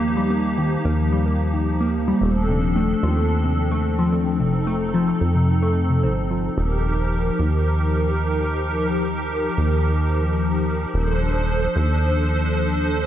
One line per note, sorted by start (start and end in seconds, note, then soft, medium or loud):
0.00 0.77 D#2 medium
0.00 6.54 F3 medium
0.00 2.17 A#3 medium
0.00 2.17 D#4 medium
0.00 2.17 G4 medium
0.17 0.28 G3 loud
0.30 0.42 A#3 medium
0.58 0.69 D#3 medium
0.85 2.14 D#2 loud
0.85 0.96 A#3 loud
1.12 1.24 G3 loud
1.26 1.37 A#3 medium
1.53 1.65 D#3 medium
1.81 1.92 A#3 loud
2.08 2.19 G3 loud
2.21 2.95 D#1 loud
2.21 2.33 A3 medium
2.21 6.54 C4 medium
2.21 4.37 D4 medium
2.21 4.37 A4 medium
2.49 2.60 C3 medium
2.76 2.87 A3 loud
3.03 4.41 D#2 medium
3.03 3.15 F3 loud
3.17 3.28 A3 medium
3.44 3.56 C3 medium
3.71 3.83 A3 loud
3.99 4.10 F3 loud
4.12 4.24 A3 medium
4.39 5.14 F1 loud
4.39 4.51 C3 medium
4.39 6.56 D#4 medium
4.39 6.56 A4 medium
4.67 4.78 A3 loud
4.94 5.06 F3 loud
5.08 5.19 A3 medium
5.21 6.05 F2 loud
5.35 5.46 C3 medium
5.62 5.74 A3 loud
5.90 6.01 C3 medium
6.03 6.50 G1 medium
6.03 6.16 C4 medium
6.31 6.42 F3 medium
6.58 7.32 D#1 loud
6.58 13.06 F3 medium
6.58 10.90 D#4 medium
6.58 10.90 G4 medium
6.58 10.90 A#4 medium
7.39 9.50 D#2 loud
9.58 10.86 D#2 loud
10.94 11.68 D#1 loud
10.94 13.06 D4 medium
10.94 13.06 A4 medium
10.94 13.06 C5 medium
11.76 13.06 D#2 loud